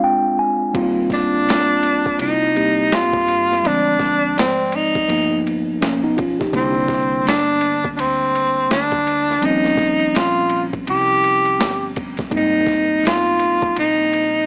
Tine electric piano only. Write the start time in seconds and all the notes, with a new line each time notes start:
Already playing: G#3 C4 D4 F4
0.04 G5
0.39 G#5
0.74 G3 A#3 C4 F4
2.55 G3 A#3 C4 G4
3.64 F3 G#3 C4 D5
5.08 F3 A#3 B3 D#4
5.81 A#3 C#4
6.03 B3 D#4
6.17 C#4 F4
6.40 D#4 G4
6.52 D3 G3 A#3 D4
9.41 F3 G3 C4 C#4
12.30 G3 A#3 C4 D#4